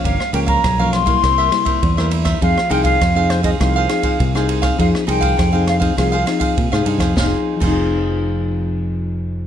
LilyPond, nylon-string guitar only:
\new Staff \with { instrumentName = "Nylon-string guitar" } { \time 4/4 \key f \minor \tempo 4 = 101 << { <f bes des'>16 r16 <f bes des'>8 r16 <f bes des'>8 <g bes e'>8. <g bes e'>8. <g bes e'>8. | <c' ees' aes'>16 r16 <c' ees' aes'>8 r16 <c' ees' aes'>8 <c' ees' aes'>16 <c' ees' aes'>8 <c' ees' aes'>8 r16 <c' ees' aes'>8. | <c' ees' aes'>8 <c' ees' aes'>8. <c' ees' aes'>8 <c' ees' aes'>16 <c' ees' aes'>16 r16 <c' ees' aes'>8 r16 <c' ees' aes'>8. | <f c' ees' aes'>16 r8 <f c' ees' aes'>2.~ <f c' ees' aes'>16 | } \\ { g,4 g,4 c4 g,4 | f4 c4 f4 c4 | f4 c4 f4 c4 | r1 | } >> }